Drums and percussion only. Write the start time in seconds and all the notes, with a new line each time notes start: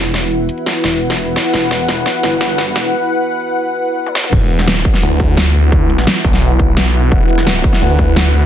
0.05 closed hi-hat
0.14 snare, closed hi-hat
0.32 closed hi-hat
0.49 closed hi-hat
0.58 closed hi-hat
0.66 snare, closed hi-hat
0.84 snare, closed hi-hat
0.93 closed hi-hat
1.01 closed hi-hat
1.10 snare
1.19 closed hi-hat
1.36 snare, closed hi-hat
1.45 closed hi-hat
1.54 snare, closed hi-hat
1.71 snare, closed hi-hat
1.88 snare, closed hi-hat
1.97 closed hi-hat
2.06 snare, closed hi-hat
2.23 snare, closed hi-hat
2.32 closed hi-hat
2.41 snare, closed hi-hat
2.58 snare, closed hi-hat
2.76 snare, closed hi-hat
2.84 closed hi-hat
4.07 high tom
4.15 snare
4.24 mid tom
4.33 kick, closed hi-hat, crash
4.50 closed hi-hat
4.59 snare
4.68 snare, closed hi-hat
4.85 kick, closed hi-hat
4.94 snare
5.02 closed hi-hat
5.11 closed hi-hat
5.20 kick, closed hi-hat
5.37 snare, closed hi-hat
5.55 closed hi-hat
5.63 closed hi-hat
5.72 kick, closed hi-hat
5.90 closed hi-hat
5.98 snare
6.07 snare, closed hi-hat
6.25 kick, open hi-hat
6.33 snare
6.42 closed hi-hat
6.51 closed hi-hat
6.59 kick, closed hi-hat
6.77 snare, closed hi-hat
6.94 closed hi-hat
7.03 closed hi-hat
7.12 kick, closed hi-hat
7.29 closed hi-hat
7.38 snare
7.47 snare, closed hi-hat
7.64 kick, closed hi-hat
7.73 snare
7.81 closed hi-hat
7.90 closed hi-hat
7.99 kick, closed hi-hat
8.16 snare, closed hi-hat
8.34 closed hi-hat
8.43 closed hi-hat